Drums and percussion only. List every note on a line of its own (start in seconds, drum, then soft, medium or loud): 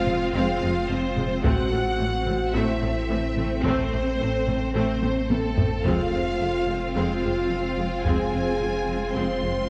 0.07 taiko low-mid soft
1.17 taiko low-mid medium
1.44 taiko medium
2.27 taiko low-mid medium
3.37 taiko low-mid medium
3.65 taiko medium
4.47 taiko low-mid soft
5.02 taiko high medium
5.30 taiko high medium
5.57 taiko low medium
5.85 taiko medium
8.05 taiko medium